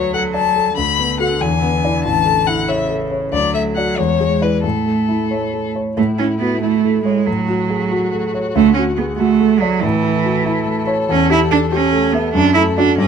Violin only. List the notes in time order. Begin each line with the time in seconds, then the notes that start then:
Already playing: C#5
0.14 F#5
0.35 A5
0.77 B5
1.20 F#5
1.41 G#5
2.04 A5
2.47 F#5
2.68 E5
3.33 D5
3.54 E5
3.76 F#5
3.97 C#5
4.42 B4
4.64 A4
5.97 E4
7.27 F#4
9.83 A4
12.35 A4
12.98 D5